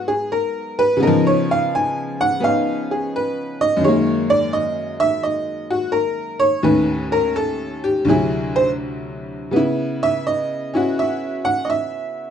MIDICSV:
0, 0, Header, 1, 2, 480
1, 0, Start_track
1, 0, Tempo, 702576
1, 695, Time_signature, 4, 2, 24, 8
1, 4533, Tempo, 718563
1, 8319, End_track
2, 0, Start_track
2, 0, Title_t, "Honky-tonk piano"
2, 0, Program_c, 0, 3
2, 0, Note_on_c, 0, 44, 52
2, 0, Note_on_c, 0, 54, 49
2, 0, Note_on_c, 0, 56, 48
2, 0, Note_on_c, 0, 59, 66
2, 54, Note_on_c, 0, 68, 73
2, 204, Note_off_c, 0, 68, 0
2, 218, Note_on_c, 0, 70, 60
2, 538, Note_off_c, 0, 70, 0
2, 538, Note_on_c, 0, 71, 92
2, 661, Note_on_c, 0, 49, 53
2, 674, Note_off_c, 0, 44, 0
2, 675, Note_off_c, 0, 59, 0
2, 685, Note_on_c, 0, 59, 51
2, 686, Note_off_c, 0, 71, 0
2, 688, Note_off_c, 0, 54, 0
2, 699, Note_off_c, 0, 56, 0
2, 701, Note_on_c, 0, 70, 69
2, 707, Note_on_c, 0, 63, 49
2, 733, Note_on_c, 0, 53, 66
2, 853, Note_off_c, 0, 70, 0
2, 865, Note_on_c, 0, 73, 74
2, 1015, Note_off_c, 0, 73, 0
2, 1034, Note_on_c, 0, 77, 72
2, 1180, Note_off_c, 0, 77, 0
2, 1196, Note_on_c, 0, 80, 83
2, 1506, Note_off_c, 0, 80, 0
2, 1508, Note_on_c, 0, 78, 94
2, 1632, Note_off_c, 0, 59, 0
2, 1642, Note_on_c, 0, 59, 45
2, 1650, Note_off_c, 0, 78, 0
2, 1652, Note_off_c, 0, 63, 0
2, 1652, Note_on_c, 0, 61, 38
2, 1662, Note_on_c, 0, 63, 45
2, 1668, Note_on_c, 0, 77, 78
2, 1981, Note_off_c, 0, 77, 0
2, 1990, Note_on_c, 0, 68, 54
2, 2132, Note_off_c, 0, 68, 0
2, 2158, Note_on_c, 0, 71, 62
2, 2467, Note_off_c, 0, 71, 0
2, 2467, Note_on_c, 0, 75, 92
2, 2573, Note_on_c, 0, 42, 50
2, 2596, Note_off_c, 0, 49, 0
2, 2600, Note_on_c, 0, 51, 44
2, 2607, Note_off_c, 0, 59, 0
2, 2609, Note_off_c, 0, 75, 0
2, 2612, Note_off_c, 0, 61, 0
2, 2617, Note_off_c, 0, 63, 0
2, 2626, Note_on_c, 0, 73, 69
2, 2628, Note_on_c, 0, 56, 48
2, 2632, Note_off_c, 0, 53, 0
2, 2650, Note_on_c, 0, 58, 54
2, 2938, Note_on_c, 0, 74, 91
2, 2939, Note_off_c, 0, 73, 0
2, 3083, Note_off_c, 0, 74, 0
2, 3096, Note_on_c, 0, 75, 75
2, 3414, Note_off_c, 0, 75, 0
2, 3416, Note_on_c, 0, 76, 95
2, 3563, Note_off_c, 0, 76, 0
2, 3576, Note_on_c, 0, 75, 63
2, 3894, Note_off_c, 0, 75, 0
2, 3898, Note_on_c, 0, 66, 59
2, 4043, Note_off_c, 0, 66, 0
2, 4044, Note_on_c, 0, 70, 68
2, 4369, Note_off_c, 0, 70, 0
2, 4369, Note_on_c, 0, 73, 94
2, 4512, Note_off_c, 0, 42, 0
2, 4520, Note_off_c, 0, 51, 0
2, 4521, Note_off_c, 0, 73, 0
2, 4528, Note_on_c, 0, 39, 49
2, 4529, Note_on_c, 0, 45, 48
2, 4530, Note_on_c, 0, 51, 41
2, 4535, Note_on_c, 0, 61, 51
2, 4537, Note_on_c, 0, 71, 66
2, 4540, Note_off_c, 0, 56, 0
2, 4550, Note_off_c, 0, 58, 0
2, 4854, Note_off_c, 0, 71, 0
2, 4858, Note_on_c, 0, 70, 84
2, 5005, Note_off_c, 0, 70, 0
2, 5016, Note_on_c, 0, 69, 74
2, 5337, Note_off_c, 0, 69, 0
2, 5337, Note_on_c, 0, 67, 74
2, 5477, Note_on_c, 0, 38, 52
2, 5484, Note_off_c, 0, 67, 0
2, 5489, Note_on_c, 0, 48, 52
2, 5490, Note_off_c, 0, 39, 0
2, 5491, Note_off_c, 0, 45, 0
2, 5491, Note_off_c, 0, 51, 0
2, 5494, Note_off_c, 0, 61, 0
2, 5501, Note_on_c, 0, 54, 52
2, 5507, Note_on_c, 0, 68, 70
2, 5513, Note_on_c, 0, 64, 57
2, 5818, Note_on_c, 0, 72, 81
2, 5822, Note_off_c, 0, 68, 0
2, 5910, Note_off_c, 0, 72, 0
2, 6452, Note_off_c, 0, 38, 0
2, 6455, Note_on_c, 0, 49, 43
2, 6458, Note_off_c, 0, 48, 0
2, 6465, Note_off_c, 0, 54, 0
2, 6465, Note_on_c, 0, 59, 44
2, 6470, Note_off_c, 0, 64, 0
2, 6488, Note_on_c, 0, 64, 58
2, 6800, Note_on_c, 0, 76, 87
2, 6942, Note_off_c, 0, 76, 0
2, 6959, Note_on_c, 0, 75, 69
2, 7271, Note_off_c, 0, 64, 0
2, 7272, Note_on_c, 0, 61, 43
2, 7281, Note_on_c, 0, 64, 40
2, 7292, Note_on_c, 0, 66, 46
2, 7404, Note_off_c, 0, 75, 0
2, 7443, Note_on_c, 0, 76, 64
2, 7748, Note_on_c, 0, 78, 85
2, 7751, Note_off_c, 0, 76, 0
2, 7882, Note_on_c, 0, 75, 48
2, 7892, Note_off_c, 0, 78, 0
2, 7914, Note_on_c, 0, 76, 68
2, 7916, Note_off_c, 0, 75, 0
2, 8319, Note_off_c, 0, 49, 0
2, 8319, Note_off_c, 0, 59, 0
2, 8319, Note_off_c, 0, 61, 0
2, 8319, Note_off_c, 0, 64, 0
2, 8319, Note_off_c, 0, 66, 0
2, 8319, Note_off_c, 0, 76, 0
2, 8319, End_track
0, 0, End_of_file